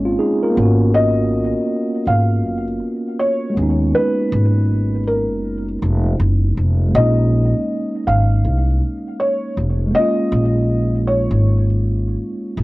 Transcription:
Already playing: G#1 G#3 C#4
0.05 C4 F4
0.19 D#4 G#4
0.43 F4 A#4
0.50 A#3
0.54 G#1 B3
0.58 C#4
0.62 F#4
0.94 D#5
2.07 G#1 F5
2.45 F#1
3.19 C#5
3.50 G#3
3.54 D#2 B3
3.58 C#4
3.63 D#4
3.95 B4
4.32 G#1
5.07 A#4
5.31 F#1
5.82 F1
6.20 F#1
6.57 F1
6.88 G#3
6.92 A#1 A#3 D#5
6.96 C#4
7.00 D#4
8.07 G#1 F5
8.45 C2
9.20 C#5
9.57 F1
9.87 G#3
9.91 A#3 D#5
9.95 C#4
9.99 F4
10.32 A#1
11.07 C#5
11.31 G#1
12.57 G#1

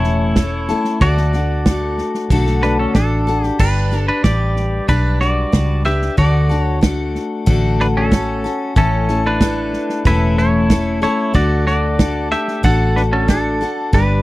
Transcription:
Already playing: E1 A2 E3 A3 C#4 E4 A4 C#5
0.04 snare
0.36 A3 C#4 E4 A4, kick, snare, hi-hat pedal
0.69 A3 C#4 E4 A4, snare
0.84 snare
1.01 D2 D3 A3 D4 F#4 A4 D5, kick, snare
1.17 snare
1.33 D4 F#4 A4, snare
1.66 A3 D4 F#4 A4, kick, snare, hi-hat pedal
1.98 snare
2.14 snare
2.30 B1 D3 A3 D4 F#4 A4, kick, snare
2.47 snare
2.63 D4 B4, snare
2.79 C#4 A4
2.95 A1 A3 D4 F#4 A4, kick, snare, hi-hat pedal
3.27 D4 F#4 A4, snare
3.43 G4, snare
3.59 G1 G3 D4 G4 B4, kick, snare, crash
3.91 D4 G4 B4, snare
4.08 D4 B4
4.24 A1 G3 D4 G4 B4 D5, kick, snare, hi-hat pedal
4.56 snare
4.88 B1 G3 D4 B4, kick, snare
5.21 F#4 D5, snare
5.52 C#2 G3 D4 B4, kick, snare, hi-hat pedal
5.85 D4 G4 B4 E5, snare
6.02 snare
6.17 D2 D3 A3 D4 F#4 A4 D5, kick, snare
6.49 D4 F#4 A4, snare
6.61 C#5
6.81 A3 D4 F#4 A4, kick, snare, hi-hat pedal
7.15 snare
7.46 A1 D3 A3 D4 F#4 A4, kick, snare
7.80 D4 B4, snare
7.97 C#4 A4
8.11 A3 F#4 A4, kick, snare, hi-hat pedal
8.44 F#4 A4, snare
8.76 A1 A2 E3 A3 C#4 E4 A4, kick, snare
9.09 A3 C#4 E4 A4, snare
9.26 D4 B4
9.41 A3 E4 A4, kick, snare, hi-hat pedal
9.73 snare
9.90 snare
10.05 E1 A2 E3 A3 C#4 E4 A4 B4, kick, snare
10.38 E4 C#5, snare
10.70 A3 C#4 E4 A4, kick, snare, hi-hat pedal
11.02 A3 C#4 E4 A4 C#5, snare
11.34 D2 D3 A3 D4 F#4 A4 D5, kick, snare
11.67 F#4 D5, snare
11.99 A3 D4 A4, kick, snare, hi-hat pedal
12.32 G4 E5, snare
12.48 snare
12.63 A1 D3 A3 D4 F#4 A4 F#5, kick, snare
12.96 D4 B4, snare
13.13 C#4 A4
13.28 A3 D4 F#4 A4, kick, snare, hi-hat pedal
13.61 D4 F#4 A4, snare
13.93 G1 G3 D4 G4 B4, kick, snare

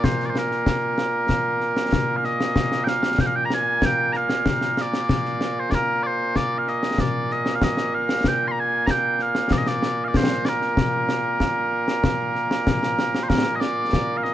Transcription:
Already playing: A#2 A#3
0.04 C5, concert bass drum, snare
0.20 snare
0.25 D5
0.30 C5
0.35 A#4, snare
0.51 snare
0.66 concert bass drum, snare
0.98 snare
1.29 concert bass drum, snare
1.61 snare
1.77 snare
1.93 concert bass drum, snare
2.16 F5
2.24 D#5, snare
2.41 snare
2.56 concert bass drum, snare
2.72 snare
2.84 F5 G5, snare
3.03 snare
3.18 G5, concert bass drum, snare
3.26 F5
3.36 G5
3.45 A#5
3.50 G#5, snare
3.82 G5, concert bass drum, snare
4.13 F5 A#5, snare
4.29 snare
4.46 concert bass drum, snare
4.61 snare
4.77 D5, snare
4.93 snare
5.09 concert bass drum, snare
5.25 snare
5.41 snare
5.60 C5
5.71 A#4 D5, concert bass drum, snare
6.03 C5 D5
6.36 D5, concert bass drum, snare
6.58 F5
6.67 D#5, snare
6.83 snare
6.98 D5, concert bass drum, snare
7.30 D#5, snare
7.46 snare
7.55 F5
7.62 D#5, concert bass drum, snare
7.77 snare
7.94 F5
8.09 snare
8.24 G5, concert bass drum, snare
8.48 A#5 C6
8.60 G#5
8.86 A#5, concert bass drum, snare
8.91 G5
9.19 F5, snare
9.35 snare
9.51 D5, concert bass drum, snare
9.57 D#5
9.66 D5, snare
9.83 snare
10.04 D5 F5
10.14 C5, concert bass drum, snare
10.30 snare
10.45 A#4 D5, snare
10.61 snare
10.77 concert bass drum, snare
11.09 snare
11.40 concert bass drum, snare
11.88 snare
12.04 concert bass drum, snare
12.35 snare
12.51 snare
12.67 concert bass drum, snare
12.83 snare
12.99 snare
13.15 snare
13.23 C5
13.29 A#4, concert bass drum, snare
13.55 D#5
13.60 D5, snare
13.93 concert bass drum, snare
14.17 F5
14.23 D#5, snare

